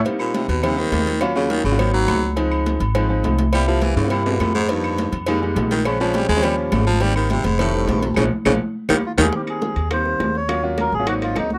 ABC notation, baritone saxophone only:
X:1
M:4/4
L:1/8
Q:1/4=207
K:Ab
V:1 name="Baritone saxophone" clef=bass
z B,, C, _C, =C, E,3 | z D, E, D, E, _G,3 | z8 | G, F, =E, D, C, _C, B,, A,, |
G,,3 z4 E, | D, F, G, A, G, B,, D, F, | G, E, C, A,, =A,,4 | D, z D, z2 E, z E, |
z8 | z8 |]